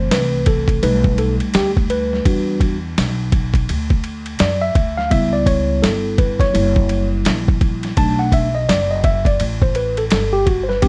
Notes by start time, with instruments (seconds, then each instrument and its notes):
Already playing: tine electric piano E3 A3 C4 C5
0.11 upright bass C2, tine electric piano B4, snare, hi-hat pedal, ride
0.46 tine electric piano A4, kick, ride
0.68 kick, ride
0.83 upright bass B1, tine electric piano G3 A3 D#4 B4, ride
1.04 kick
1.18 tine electric piano A4, ride
1.40 ride
1.54 upright bass D2, tine electric piano G4, snare, hi-hat pedal, ride
1.77 kick
1.90 tine electric piano B4, ride
2.13 snare
2.25 upright bass E2, tine electric piano G3 D4 F#4, kick, ride
2.60 kick, ride
2.98 upright bass B1, snare, hi-hat pedal, ride
3.32 kick, ride
3.54 kick, ride
3.69 upright bass D2, ride
3.90 kick
4.04 ride
4.26 ride
4.39 upright bass F#2, tine electric piano D5, snare, hi-hat pedal, ride
4.62 tine electric piano E5
4.75 upright bass D2, kick, ride
4.97 tine electric piano F5, snare
5.10 upright bass C#2, tine electric piano G3 B3 E4 E5, kick, ride
5.33 tine electric piano D5
5.46 tine electric piano C#5, kick, ride
5.82 upright bass G1, tine electric piano A4, snare, hi-hat pedal, ride
6.18 tine electric piano B4, kick, ride
6.40 tine electric piano C#5, kick, snare, ride
6.53 upright bass F#1, tine electric piano G3 A#3 E4, ride
6.76 kick
6.89 ride
7.25 upright bass A#1, snare, hi-hat pedal, ride
7.48 kick
7.61 kick, ride
7.83 snare, ride
7.97 upright bass B1, tine electric piano F#3 A3 D4 A5, kick, ride
8.19 tine electric piano F#5
8.32 tine electric piano E5, kick, ride
8.55 tine electric piano D#5
8.69 upright bass F#1, tine electric piano D5, snare, hi-hat pedal, ride
8.91 tine electric piano D#5
9.04 tine electric piano E5, kick, ride
9.25 tine electric piano D5, kick, ride
9.40 upright bass A1, ride
9.62 tine electric piano C5, kick
9.75 tine electric piano B4, ride
9.97 tine electric piano A4, ride
10.10 upright bass G1, tine electric piano A4, snare, hi-hat pedal, ride
10.33 tine electric piano G4
10.46 tine electric piano F#4, kick, ride
10.63 tine electric piano C5
10.69 tine electric piano B4, snare
10.82 upright bass A1, tine electric piano G3 B3 C4 D4 G4, kick, ride